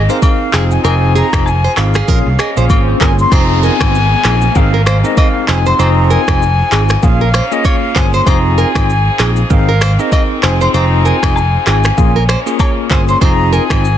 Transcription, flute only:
0.00 0.11 D#5 medium
0.10 0.22 F5 medium
0.23 0.73 F5 medium
0.72 0.84 G#5 medium
0.85 1.13 G#5 loud
1.16 1.48 A#5 loud
1.47 1.79 G#5 medium
1.77 2.41 F5 loud
2.40 2.59 D#5 medium
2.57 2.82 F5 medium
3.01 3.18 G#5 loud
3.20 3.34 C6 loud
3.33 3.65 A#5 loud
3.63 4.58 G#5 loud
4.56 5.07 F5 loud
5.05 5.20 D#5 medium
5.18 5.48 F5 loud
5.49 5.69 G#5 loud
5.67 5.82 C6 loud
5.80 6.12 A#5 loud
6.11 7.05 G#5 loud
7.04 7.54 F5 loud
7.52 7.67 D#5 medium
7.65 7.98 F5 medium
7.96 8.14 G#5 loud
8.14 8.29 C6 loud
8.27 8.60 A#5 loud
8.58 9.24 G#5 loud
9.51 10.01 F5 medium
10.00 10.12 D#5 medium
10.13 10.20 F5 medium
10.44 10.63 G#5 loud
10.61 10.74 C6 medium
10.74 11.07 A#5 loud
11.05 11.67 G#5 loud
11.67 12.56 G#5 loud
12.91 13.07 G#5 loud
13.09 13.21 C6 loud
13.22 13.54 A#5 loud
13.53 13.98 G#5 loud

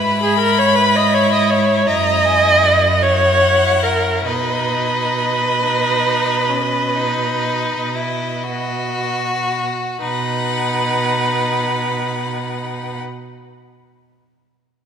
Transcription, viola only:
0.00 0.22 B4 loud
0.23 0.38 G#4 medium
0.39 0.60 A#4 loud
0.59 0.77 C#5 medium
0.76 0.97 B4 loud
0.96 1.16 D#5 loud
1.14 1.32 C#5 loud
1.32 1.51 D#5 loud
1.50 1.88 C#5 medium
1.87 3.03 D#5 loud
3.02 3.85 C#5 loud
3.83 4.27 A#4 medium
4.25 9.48 B4 medium
10.01 12.99 B4 medium

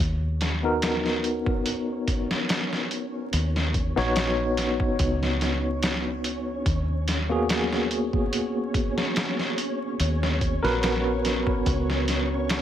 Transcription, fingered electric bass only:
0.00 2.87 D#2 medium
3.33 3.93 D#2 medium
3.97 4.96 A#1 medium
4.99 6.62 C#2 medium
6.66 9.54 D#2 medium
10.00 10.59 D#2 medium
10.64 11.62 A#1 medium
11.66 12.62 C#2 medium

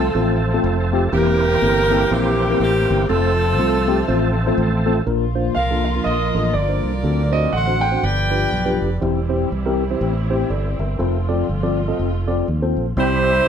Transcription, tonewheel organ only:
0.00 1.10 F3 medium
0.00 1.10 A3 medium
0.00 1.10 C4 medium
0.00 1.13 A4 medium
1.12 3.06 E3 medium
1.12 3.05 A#3 medium
1.12 3.05 C4 medium
1.12 3.06 G4 medium
3.09 5.02 F3 medium
3.09 5.02 A3 medium
3.09 5.03 C4 medium
3.09 5.02 A4 medium
12.98 13.48 G3 medium
12.98 13.48 C4 medium
12.98 13.48 E4 medium

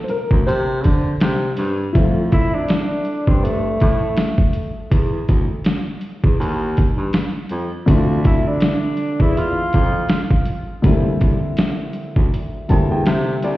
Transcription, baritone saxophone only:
0.31 0.44 D2 medium
0.47 0.87 C3 loud
0.85 1.16 D3 loud
1.21 1.52 C3 loud
1.58 1.89 G2 loud
1.95 2.58 F2 medium
3.27 3.72 G2 medium
3.82 4.12 A2 medium
4.91 5.23 E2 medium
5.29 5.46 D2 medium
6.24 6.37 E2 medium
6.40 6.89 D#2 loud
6.97 7.11 G2 medium
7.51 7.69 F2 loud
7.88 8.50 D2 loud
9.20 9.65 E2 medium
9.74 10.05 F2 medium
10.84 11.15 C2 medium
11.21 11.39 C2 medium
12.16 12.30 D2 medium
12.70 12.88 C2 medium
12.90 13.04 E2 medium
13.06 13.38 C3 loud
13.43 13.57 C2 medium

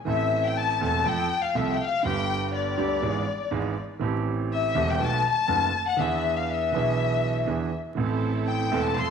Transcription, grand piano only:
0.05 0.77 A1 medium
0.05 0.77 A2 medium
0.05 0.76 E3 medium
0.05 0.77 A3 medium
0.05 0.78 C4 medium
0.09 0.78 A4 medium
0.81 1.02 E1 medium
0.81 1.02 E2 medium
0.81 1.01 E3 medium
0.81 1.01 A3 medium
0.81 1.01 C4 medium
0.81 1.02 A4 medium
1.06 1.27 F2 medium
1.06 1.26 F3 medium
1.06 1.26 A3 medium
1.06 1.26 C4 medium
1.06 1.26 A4 medium
1.55 1.76 C2 medium
1.55 1.75 C3 medium
1.55 1.75 F3 medium
1.55 1.76 A3 medium
1.55 1.76 C4 medium
1.55 1.76 A4 medium
2.03 2.75 G1 medium
2.03 2.75 G2 medium
2.03 2.74 D3 medium
2.03 2.74 G3 medium
2.03 2.75 B3 medium
2.07 2.76 G4 medium
2.78 2.99 D2 medium
2.78 2.99 D3 medium
2.78 2.99 G3 medium
2.78 2.99 B3 medium
2.78 2.99 G4 medium
3.02 3.23 G#1 medium
3.02 3.23 G#2 medium
3.02 3.23 E3 medium
3.02 3.23 G#3 medium
3.02 3.23 B3 medium
3.02 3.24 G#4 medium
3.51 3.73 G#1 medium
3.51 3.72 G#2 medium
3.51 3.72 E3 medium
3.51 3.73 G#3 medium
3.51 3.72 B3 medium
3.51 3.73 G#4 medium
3.99 4.71 A1 medium
3.99 4.71 A2 medium
3.99 4.71 E3 medium
3.99 4.71 A3 medium
3.99 4.72 C4 medium
3.99 4.73 G4 medium
4.75 4.96 E1 medium
4.75 4.96 E2 medium
4.75 4.96 E3 medium
4.75 4.96 A3 medium
4.75 4.96 C4 medium
4.75 4.96 G4 medium
4.99 5.21 B1 medium
4.99 5.21 B2 medium
4.99 5.20 D#3 medium
4.99 5.20 A3 medium
4.99 5.21 B3 medium
4.99 5.21 F#4 medium
5.48 5.70 F#1 medium
5.48 5.70 F#2 medium
5.48 5.70 D#3 medium
5.48 5.70 A3 medium
5.48 5.70 B3 medium
5.48 5.70 F#4 medium
5.98 6.70 E2 medium
5.98 6.70 E3 medium
5.98 6.69 B3 medium
5.98 6.70 D4 medium
5.98 6.71 G#4 medium
6.72 7.45 B1 medium
6.72 7.45 B2 medium
6.72 7.44 E3 medium
6.72 7.45 B3 medium
6.72 7.45 D4 medium
6.72 7.46 G#4 medium
7.47 7.69 E2 medium
7.47 7.69 E3 medium
7.47 7.69 B3 medium
7.47 7.69 D4 medium
7.47 7.69 G#4 medium
7.95 8.68 A1 medium
7.95 8.68 A2 medium
7.95 8.67 E3 medium
7.95 8.68 A3 medium
7.95 8.69 C4 medium
7.99 8.69 A4 medium
8.71 8.93 E1 medium
8.71 8.93 E2 medium
8.71 8.93 E3 medium
8.71 8.93 A3 medium
8.71 8.93 C4 medium
8.71 8.93 A4 medium
8.96 9.10 F2 medium
8.96 9.10 F3 medium
8.96 9.10 A3 medium
8.96 9.10 C4 medium
8.96 9.10 A4 medium

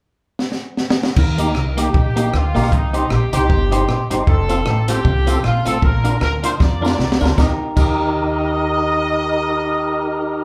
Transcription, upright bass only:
1.17 1.55 D#2 loud
1.55 1.89 C2 medium
1.94 2.27 A#1 loud
2.33 2.52 D2 medium
2.55 2.72 A#1 medium
2.72 3.05 C2 loud
3.11 3.30 A#1 medium
3.33 3.47 C2 loud
3.50 3.83 G1 loud
3.89 4.08 A#1 medium
4.11 4.25 G1 medium
4.27 4.60 F1 loud
4.67 4.99 A1 loud
5.05 5.38 C2 medium
5.44 5.63 A#1 medium
5.67 5.80 A1 medium
5.83 6.15 A#1 medium
6.21 6.54 D2 medium
6.60 6.93 F2 loud
6.99 7.18 C2 medium
7.21 7.35 D2 medium
7.38 7.50 D#2 medium
7.77 10.44 D#2 medium

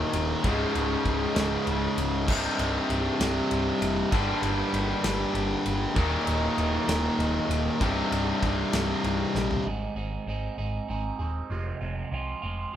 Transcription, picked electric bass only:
0.14 0.33 D#1 loud
0.44 0.63 C#1 medium
0.75 0.94 C#1 medium
1.06 1.25 C#1 medium
1.36 1.55 C#1 loud
1.67 1.86 C#1 medium
1.97 2.28 C#1 medium
2.28 2.47 C1 loud
2.59 2.78 C1 medium
2.90 3.09 C1 loud
3.20 3.39 C1 loud
3.51 3.70 C1 medium
3.82 4.01 F1 loud
4.12 4.31 G1 medium
4.42 4.61 G1 medium
4.73 4.92 G1 medium
5.04 5.23 G1 loud
5.34 5.54 G1 medium
5.66 5.85 G1 medium
5.96 6.15 D#1 loud
6.27 6.46 D#1 medium
6.58 6.77 D#1 medium
6.88 7.07 D#1 loud
7.18 7.38 D#1 loud
7.49 7.68 D#1 loud
7.81 8.00 C1 loud
8.11 8.30 C1 medium
8.43 8.61 C1 loud
8.73 8.92 C1 loud
9.04 9.23 C1 medium
9.35 9.54 A#1 medium
9.65 9.86 G#1 medium
9.95 10.16 G#1 medium
10.26 10.47 G#1 medium
10.58 10.78 G#1 medium
10.89 11.09 G#1 medium
11.19 11.40 D#1 medium
11.50 11.71 F1 medium
11.81 12.02 F1 medium
12.12 12.33 C2 medium
12.43 12.64 F1 medium

